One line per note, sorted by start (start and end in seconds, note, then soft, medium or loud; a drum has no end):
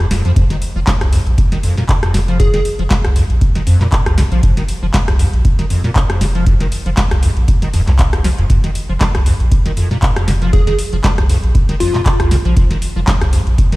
0.11 0.21 D#1 loud
0.11 0.22 F2 medium
0.11 snare medium
0.11 open hi-hat loud
0.25 0.33 F2 loud
0.25 0.31 F3 medium
0.25 closed hi-hat soft
0.36 0.46 F1 loud
0.36 0.44 F2 medium
0.36 kick loud
0.36 closed hi-hat medium
0.50 0.57 D#3 medium
0.50 snare soft
0.50 closed hi-hat medium
0.62 open hi-hat loud
0.76 0.84 F1 medium
0.76 0.80 F3 medium
0.87 0.92 F1 medium
0.87 kick loud
0.87 snare medium
0.87 clap loud
0.87 closed hi-hat medium
1.01 1.19 C2 medium
1.01 1.05 F2 medium
1.01 cross-stick medium
1.01 closed hi-hat soft
1.13 1.20 F2 medium
1.13 open hi-hat loud
1.27 1.35 A#1 medium
1.27 closed hi-hat soft
1.38 kick loud
1.38 closed hi-hat medium
1.52 1.58 D#3 medium
1.52 snare soft
1.52 closed hi-hat medium
1.63 1.75 F2 medium
1.63 open hi-hat loud
1.77 1.84 A#2 medium
1.77 snare soft
1.89 1.93 F1 medium
1.89 kick loud
1.89 clap loud
1.89 closed hi-hat medium
2.03 2.16 F2 medium
2.03 cross-stick medium
2.03 closed hi-hat medium
2.14 2.47 F1 medium
2.14 2.19 F3 medium
2.14 snare medium
2.14 open hi-hat loud
2.28 2.38 F3 medium
2.28 closed hi-hat soft
2.40 2.47 F2 medium
2.40 2.49 G#4 medium
2.40 kick loud
2.40 closed hi-hat medium
2.54 2.62 F1 medium
2.54 2.60 D#3 medium
2.54 2.61 G#4 medium
2.54 snare soft
2.54 closed hi-hat medium
2.65 open hi-hat loud
2.79 2.87 F1 medium
2.79 2.83 F3 medium
2.79 closed hi-hat soft
2.90 2.95 F1 medium
2.90 kick loud
2.90 snare medium
2.90 clap loud
2.90 closed hi-hat medium
3.04 3.22 C2 medium
3.04 3.08 F2 medium
3.04 cross-stick medium
3.04 closed hi-hat medium
3.16 3.24 F2 medium
3.16 open hi-hat loud
3.30 3.38 A#1 medium
3.30 closed hi-hat soft
3.41 kick loud
3.41 closed hi-hat medium
3.55 3.62 D#3 medium
3.55 snare soft
3.55 closed hi-hat medium
3.67 3.77 F2 medium
3.67 3.78 F2 medium
3.67 open hi-hat loud
3.81 3.87 A#2 medium
3.81 snare soft
3.81 clap soft
3.92 3.97 F1 medium
3.92 kick loud
3.92 clap loud
3.92 closed hi-hat medium
4.06 4.24 C2 loud
4.06 4.19 F2 medium
4.06 cross-stick medium
4.06 closed hi-hat medium
4.18 4.22 F3 medium
4.18 snare medium
4.18 open hi-hat loud
4.32 4.40 A#1 loud
4.32 4.41 F3 medium
4.32 closed hi-hat soft
4.43 4.53 F1 loud
4.43 4.51 F2 medium
4.43 kick loud
4.43 closed hi-hat medium
4.57 4.63 D#3 medium
4.57 snare soft
4.57 closed hi-hat medium
4.69 open hi-hat loud
4.83 4.91 F1 medium
4.83 4.86 F3 medium
4.94 4.99 F1 medium
4.94 kick loud
4.94 snare medium
4.94 clap loud
4.94 closed hi-hat medium
5.08 5.25 C2 medium
5.08 5.12 F2 medium
5.08 cross-stick medium
5.08 closed hi-hat medium
5.19 5.27 F2 medium
5.19 open hi-hat loud
5.33 5.42 A#1 medium
5.33 closed hi-hat soft
5.45 kick loud
5.45 closed hi-hat medium
5.59 5.65 D#3 medium
5.59 snare soft
5.59 closed hi-hat medium
5.70 5.82 F2 medium
5.70 open hi-hat loud
5.84 5.91 A#2 medium
5.84 snare soft
5.96 6.00 F1 medium
5.96 kick loud
5.96 clap loud
5.96 closed hi-hat medium
6.10 6.23 F2 medium
6.10 cross-stick medium
6.10 closed hi-hat medium
6.21 6.54 F1 medium
6.21 6.26 F3 medium
6.21 snare medium
6.21 open hi-hat loud
6.35 6.45 F3 medium
6.35 closed hi-hat soft
6.46 6.54 F2 medium
6.46 kick loud
6.46 closed hi-hat medium
6.60 6.69 F1 medium
6.60 6.67 D#3 medium
6.60 snare soft
6.60 closed hi-hat medium
6.72 open hi-hat loud
6.86 6.94 F1 medium
6.86 6.90 F3 medium
6.86 closed hi-hat soft
6.97 7.02 F1 medium
6.97 kick loud
6.97 snare medium
6.97 clap loud
6.97 closed hi-hat medium
7.11 7.29 C2 medium
7.11 7.15 F2 medium
7.11 cross-stick medium
7.11 closed hi-hat medium
7.23 7.30 F2 medium
7.23 open hi-hat loud
7.37 7.45 A#1 medium
7.37 closed hi-hat soft
7.48 kick loud
7.48 closed hi-hat medium
7.62 7.68 D#3 medium
7.62 snare soft
7.62 closed hi-hat medium
7.74 7.84 D#1 medium
7.74 7.81 F2 loud
7.74 open hi-hat loud
7.88 8.32 C2 medium
7.88 7.91 F2 medium
7.88 snare soft
7.88 clap soft
7.88 closed hi-hat soft
7.99 8.04 F1 loud
7.99 kick loud
7.99 clap loud
7.99 closed hi-hat medium
8.13 8.19 D#2 medium
8.13 cross-stick medium
8.13 closed hi-hat medium
8.24 8.29 F3 medium
8.24 snare medium
8.24 open hi-hat loud
8.38 8.47 F1 medium
8.38 8.45 F2 medium
8.38 closed hi-hat soft
8.50 8.60 F1 loud
8.50 8.58 F2 medium
8.50 kick loud
8.50 closed hi-hat medium
8.64 8.70 D#3 medium
8.64 snare soft
8.64 closed hi-hat medium
8.75 open hi-hat loud
8.89 8.98 F1 medium
8.89 8.93 F3 medium
9.01 9.08 F3 medium
9.01 kick loud
9.01 snare medium
9.01 clap loud
9.01 closed hi-hat medium
9.15 9.32 C2 medium
9.15 9.19 F2 medium
9.15 cross-stick medium
9.15 closed hi-hat medium
9.26 9.34 F2 medium
9.26 open hi-hat loud
9.40 9.48 A#1 medium
9.40 closed hi-hat soft
9.52 kick loud
9.52 closed hi-hat medium
9.66 9.72 D#3 medium
9.66 snare soft
9.66 closed hi-hat medium
9.77 9.89 F2 medium
9.77 open hi-hat loud
9.91 9.97 A#2 medium
9.91 snare soft
10.02 10.07 F1 medium
10.02 kick loud
10.02 clap loud
10.02 closed hi-hat medium
10.16 10.29 F2 medium
10.16 cross-stick medium
10.16 closed hi-hat medium
10.28 10.61 F1 medium
10.28 10.32 F3 medium
10.28 snare medium
10.28 open hi-hat loud
10.42 10.51 F3 medium
10.42 closed hi-hat soft
10.53 10.61 F2 medium
10.53 10.62 G#4 medium
10.53 kick loud
10.53 closed hi-hat medium
10.67 10.75 F1 medium
10.67 10.74 D#3 medium
10.67 10.74 G#4 medium
10.67 snare soft
10.67 closed hi-hat medium
10.79 open hi-hat loud
10.93 11.01 F1 medium
10.93 10.96 F3 medium
10.93 closed hi-hat soft
11.04 11.12 F3 medium
11.04 kick loud
11.04 snare medium
11.04 clap loud
11.04 closed hi-hat medium
11.18 11.36 C2 medium
11.18 11.22 F2 medium
11.18 cross-stick medium
11.18 closed hi-hat medium
11.29 11.37 F2 medium
11.29 open hi-hat loud
11.44 11.52 A#1 medium
11.44 closed hi-hat soft
11.55 kick loud
11.55 closed hi-hat medium
11.69 11.75 D#3 medium
11.69 snare soft
11.69 closed hi-hat medium
11.80 11.92 F2 medium
11.80 11.90 F2 medium
11.80 12.31 F4 loud
11.80 open hi-hat loud
11.94 12.01 A#2 medium
11.94 snare soft
11.94 clap soft
12.06 12.10 F1 medium
12.06 kick loud
12.06 clap loud
12.06 closed hi-hat medium
12.20 12.37 C2 loud
12.20 12.33 F2 medium
12.20 cross-stick medium
12.20 closed hi-hat medium
12.31 12.36 F3 medium
12.31 snare medium
12.31 open hi-hat loud
12.45 12.53 A#1 loud
12.45 12.55 F3 medium
12.45 closed hi-hat soft
12.57 12.67 F1 loud
12.57 12.64 F2 medium
12.57 kick loud
12.57 closed hi-hat medium
12.71 12.77 D#3 medium
12.71 snare soft
12.71 closed hi-hat medium
12.82 open hi-hat loud
12.96 13.04 F1 medium
12.96 13.00 F3 medium
13.07 13.15 F3 medium
13.07 kick loud
13.07 snare medium
13.07 clap loud
13.07 closed hi-hat medium
13.21 13.39 C2 loud
13.21 13.25 F2 medium
13.21 cross-stick medium
13.21 closed hi-hat medium
13.33 13.41 F2 medium
13.33 open hi-hat loud
13.47 13.55 A#1 medium
13.47 closed hi-hat soft
13.58 kick loud
13.58 closed hi-hat medium
13.72 13.76 D#3 medium
13.72 snare soft
13.72 closed hi-hat medium